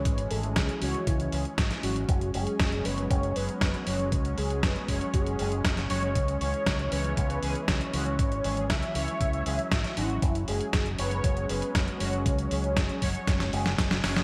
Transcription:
Already playing: E3 G#3 C#4 C#5
0.05 G#1, kick, closed hi-hat
0.18 closed hi-hat
0.31 G#1 E3 G#3 C#4 G#4 A4, open hi-hat
0.43 closed hi-hat
0.56 C#2 G#4, kick, snare, closed hi-hat
0.69 closed hi-hat
0.82 C#2 E3 G#3 C#4 F#4 C#5, open hi-hat
0.94 closed hi-hat
1.07 C#2 E4, kick, closed hi-hat
1.20 closed hi-hat
1.32 C#2 E3 G#3 C#4 G#4, open hi-hat
1.45 closed hi-hat
1.58 G#1, kick, snare, closed hi-hat
1.71 snare, closed hi-hat
1.83 G#1 E3 G#3 C#4 F#4, open hi-hat
1.96 closed hi-hat
2.09 F#1 F#3 G#3, kick, closed hi-hat
2.21 closed hi-hat
2.34 F#1 F#3 G#3 C#4 G#4, open hi-hat
2.47 closed hi-hat
2.60 F#1, kick, snare, closed hi-hat
2.72 closed hi-hat
2.85 F#1 F#3 G#3 C#4 B4 C#5, open hi-hat
2.98 closed hi-hat
3.10 F#1 C#5, kick, closed hi-hat
3.23 closed hi-hat
3.36 F#1 F#3 G#3 C#4 G#4 B4, open hi-hat
3.49 closed hi-hat
3.61 F#1, kick, snare, closed hi-hat
3.74 closed hi-hat
3.87 F#1 F#3 G#3 C#4 F#4 C#5, open hi-hat
3.99 closed hi-hat
4.12 C#2, kick, closed hi-hat
4.25 closed hi-hat
4.38 C#2 F#3 G#3 C#4 G#4, open hi-hat
4.50 closed hi-hat
4.63 F#1 B4, kick, snare, closed hi-hat
4.76 closed hi-hat
4.88 F#1 F#3 G#3 C#4 C#5, kick, open hi-hat
5.01 closed hi-hat
5.14 F#1 G#4, kick, closed hi-hat
5.26 closed hi-hat
5.39 F#1 F#3 G#3 C#4 G#4, open hi-hat
5.52 closed hi-hat
5.65 F#1, kick, snare, closed hi-hat
5.77 snare, closed hi-hat
5.90 F#1 F#3 G#3 C#4 F#4 C#5, open hi-hat
6.03 closed hi-hat
6.15 C#2 E3, kick, closed hi-hat
6.28 closed hi-hat
6.41 C#2 E3 G#3 C#4 G#4 C#5, open hi-hat
6.54 closed hi-hat
6.66 C#2, kick, snare, closed hi-hat
6.79 closed hi-hat
6.92 C#2 E3 G#3 C#4 B4 C#5, open hi-hat
7.04 closed hi-hat
7.17 C#2, kick, closed hi-hat
7.30 closed hi-hat
7.42 C#2 E3 G#3 C#4 G#4, open hi-hat
7.55 closed hi-hat
7.68 C#2 C#5, kick, snare, closed hi-hat
7.81 closed hi-hat
7.93 C#2 E3 G#3 C#4 F#4, open hi-hat
8.06 closed hi-hat
8.19 G#1 F#3 C#5, kick, closed hi-hat
8.32 closed hi-hat
8.44 G#1 E3 G#3 C#4 G#4, open hi-hat
8.57 closed hi-hat
8.70 C#2 E5, kick, snare, closed hi-hat
8.83 closed hi-hat
8.95 C#2 E3 G#3 C#4 C#5 E5, open hi-hat
9.08 closed hi-hat
9.21 C#2, kick, closed hi-hat
9.33 closed hi-hat
9.46 C#2 E3 G#3 C#4 G#4, open hi-hat
9.59 closed hi-hat
9.71 G#1, kick, snare, closed hi-hat
9.84 snare, closed hi-hat
9.97 G#1 E3 G#3 C#4 E4 F#4, open hi-hat
10.10 closed hi-hat
10.22 F#1 G#3 C#4, kick, closed hi-hat
10.35 closed hi-hat
10.48 F#1 F#3 G#3 C#4 G#4, open hi-hat
10.61 closed hi-hat
10.73 F#1, kick, snare, closed hi-hat
10.86 closed hi-hat
10.98 F#1 F#3 G#3 C#4 B4 C#5, open hi-hat
11.11 closed hi-hat
11.24 F#1 C#5, kick, closed hi-hat
11.37 closed hi-hat
11.49 F#1 F#3 G#3 C#4 G#4 B4, open hi-hat
11.62 closed hi-hat
11.75 F#1, kick, snare, closed hi-hat
11.88 closed hi-hat
12.00 F#1 F#3 G#3 C#4 F#4 C#5, open hi-hat
12.13 closed hi-hat
12.26 C#2, kick, closed hi-hat
12.39 closed hi-hat
12.51 C#2 F#3 G#3 C#4 G#4, open hi-hat
12.64 closed hi-hat
12.77 F#1, kick, snare, closed hi-hat
12.89 closed hi-hat
13.02 F#1 F#3 G#3 C#4 C#5, kick, open hi-hat
13.15 closed hi-hat
13.27 F#1, kick, snare, closed hi-hat
13.40 snare, closed hi-hat
13.53 F#1 F#3 G#3 C#4 G#4, open hi-hat
13.66 snare, closed hi-hat
13.78 F#1, kick, snare, closed hi-hat
13.91 snare, closed hi-hat
14.04 F#1 F#3 G#3 C#4 G#4, snare, open hi-hat
14.16 snare

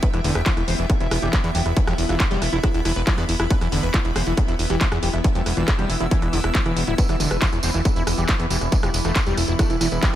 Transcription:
Already playing: B3 E4 E5 G5
0.03 B4, kick, closed hi-hat
0.14 E1 E3 E4, cross-stick, closed hi-hat
0.24 E1 D3 E4, open hi-hat
0.35 E1 B4, cross-stick
0.46 F3 E4, kick, clap, closed hi-hat
0.57 E1 E4, cross-stick, closed hi-hat
0.64 E1 E3 C5 B5, open hi-hat
0.79 E1 E3 E4, closed hi-hat
0.90 kick, cross-stick, closed hi-hat
1.00 E1 E4, closed hi-hat
1.11 E1 E4, cross-stick, open hi-hat
1.22 E1 E3 G4, closed hi-hat
1.33 F3 E4, kick, cross-stick, clap, closed hi-hat
1.44 E2 E4, closed hi-hat
1.55 E1 E3 G4, open hi-hat
1.66 E1 E4, cross-stick, closed hi-hat
1.77 E3 E4, kick, closed hi-hat
1.87 E1 F3 G4, cross-stick, closed hi-hat
1.98 E1 E4, open hi-hat
2.09 E1 E3 F4, cross-stick, closed hi-hat
2.20 E4, kick, clap, closed hi-hat
2.31 E1 G3 G4, closed hi-hat
2.42 E1 E4, cross-stick, open hi-hat
2.53 E1 E4, closed hi-hat
2.63 E3 E4, kick, cross-stick, closed hi-hat
2.74 E1 E4, closed hi-hat
2.85 E1 E3 E4, cross-stick, open hi-hat
2.96 E1 B4, closed hi-hat
3.07 F3 E4, kick, clap, closed hi-hat
3.18 E2 B3 D5, cross-stick, closed hi-hat
3.29 E1 E4, open hi-hat
3.40 E1 E4, cross-stick, closed hi-hat
3.50 B4, kick, closed hi-hat
3.61 E1 E3 E4, cross-stick, closed hi-hat
3.72 E1 D3 E4, open hi-hat
3.83 E1 B4, closed hi-hat
3.94 F3 E4, kick, cross-stick, clap, closed hi-hat
4.05 E1 E4, closed hi-hat
4.12 E1 E3 C5 E6, cross-stick, open hi-hat
4.27 E1 E3 E4, closed hi-hat
4.37 kick, cross-stick, closed hi-hat
4.48 E1 E4, closed hi-hat
4.59 E1 E4, open hi-hat
4.70 E1 E3 G4, cross-stick, closed hi-hat
4.81 E4, kick, clap, closed hi-hat
4.92 E2 E4, cross-stick, closed hi-hat
5.03 E1 E3 G4, open hi-hat
5.13 E1 E4, cross-stick, closed hi-hat
5.24 E3 E4, kick, closed hi-hat
5.35 E1 F3 G4, closed hi-hat
5.46 E1 E4, cross-stick, open hi-hat
5.57 E1 E3 F4, closed hi-hat
5.68 E4, kick, cross-stick, clap, closed hi-hat
5.79 E1 G3 G4, closed hi-hat
5.90 E1 E4, open hi-hat
6.00 E1 E4, closed hi-hat
6.11 E3 E4, kick, closed hi-hat
6.22 E1 E4, cross-stick, closed hi-hat
6.33 E1 D3 E4, open hi-hat
6.44 E1 E4, cross-stick, closed hi-hat
6.55 F3 E4, kick, clap, closed hi-hat
6.66 E1 E3 E4, cross-stick, closed hi-hat
6.77 E1 E3 E4, open hi-hat
6.87 D1 E4, closed hi-hat
6.98 E3 B4, kick, closed hi-hat, tambourine
7.09 E1 E3 E4, cross-stick, closed hi-hat, tambourine
7.20 E1 D3 E4, open hi-hat, tambourine
7.31 E1 B4, cross-stick, closed hi-hat, tambourine
7.42 F3 E4, kick, clap, closed hi-hat, tambourine
7.52 E1 E4, cross-stick, closed hi-hat, tambourine
7.60 E1 E3 C5 B5, open hi-hat, tambourine
7.74 E1 E3 E4, closed hi-hat, tambourine
7.85 kick, cross-stick, closed hi-hat, tambourine
7.96 E1 E4, closed hi-hat, tambourine
8.07 E1 E4, cross-stick, open hi-hat, tambourine
8.18 E1 E3 G4, closed hi-hat, tambourine
8.28 F3 B3 E4, kick, cross-stick, clap, closed hi-hat, tambourine
8.39 E2 B3 E4, closed hi-hat, tambourine
8.50 E1 E3 G4, open hi-hat, tambourine
8.61 E1 E4, cross-stick, closed hi-hat, tambourine
8.72 E3 E4, kick, closed hi-hat, tambourine
8.83 E1 F3 G4, cross-stick, closed hi-hat, tambourine
8.94 E1 E4, open hi-hat, tambourine
9.04 E1 E3 A3 F4, cross-stick, closed hi-hat, tambourine
9.16 E4, kick, clap, closed hi-hat, tambourine
9.27 E1 G3 G4, closed hi-hat, tambourine
9.33 D5
9.37 E1 E4, cross-stick, open hi-hat, tambourine
9.48 E1 E4, closed hi-hat, tambourine
9.59 E3 A3 E4, kick, cross-stick, closed hi-hat, tambourine
9.70 E1 E4, closed hi-hat, tambourine
9.81 E1 E3 E4, cross-stick, open hi-hat, tambourine
9.91 E1 B4, closed hi-hat, tambourine
10.03 F3 G3 E4, kick, clap, closed hi-hat, tambourine

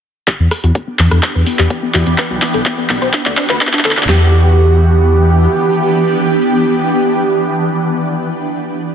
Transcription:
0.27 E3 B3 D4 G4, kick, clap, closed hi-hat
0.40 E2 B3
0.51 B3, cross-stick, open hi-hat
0.64 E2 F#4, closed hi-hat
0.75 B3, kick, closed hi-hat
0.88 B3
0.99 E2 B3, clap, open hi-hat
1.11 E2 A4, cross-stick, closed hi-hat
1.23 B3, kick, clap, closed hi-hat
1.35 E2 B4
1.47 B3, open hi-hat
1.59 E2 G4, clap, closed hi-hat
1.70 B3, kick, closed hi-hat
1.83 B3
1.94 E2 F#4, clap, open hi-hat
2.06 E2 B3, closed hi-hat
2.18 F#4 B4, kick, clap, closed hi-hat
2.30 B1 B3
2.42 B3, clap, open hi-hat
2.54 B1 A4, closed hi-hat
2.66 B3, kick, clap, closed hi-hat
2.78 B3
2.89 B1 B3, clap, open hi-hat
3.02 B1 C5, closed hi-hat
3.13 D4, kick, clap, closed hi-hat
3.26 D2 D5, clap
3.37 D4, clap, open hi-hat
3.49 D2 B4, clap, closed hi-hat
3.61 D4, kick, clap, closed hi-hat
3.67 clap
3.73 D4, clap
3.79 clap
3.85 D2 A4, clap, open hi-hat
3.91 clap
3.97 D2 D4, clap, closed hi-hat
4.03 clap
4.08 E2 E3 B3 D4 G4, snare, clap

